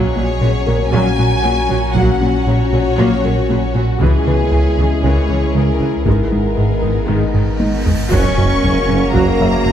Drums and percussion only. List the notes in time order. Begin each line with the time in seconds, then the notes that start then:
1.96 taiko
4.01 taiko
6.06 taiko
7.34 taiko low-mid
7.60 taiko high
7.86 taiko low
8.12 taiko
8.63 taiko low
9.15 taiko
9.40 taiko low
9.65 taiko low